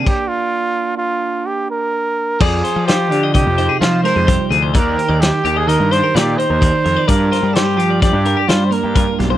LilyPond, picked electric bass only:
\new Staff \with { instrumentName = "Picked electric bass" } { \clef bass \time 5/4 \key c \minor \tempo 4 = 128 r1 r4 | f,8 r16 f8. d8. f,8 r16 f8 r16 f,8 r16 d,8 | ees,8 r16 ees,8 r16 ees,8. g,8 r16 bes,8 r16 ees,8 r16 f,16 r16 | g,8 r16 g8. f8. g,8 r16 g8 r16 g,8 r16 b,,8 | }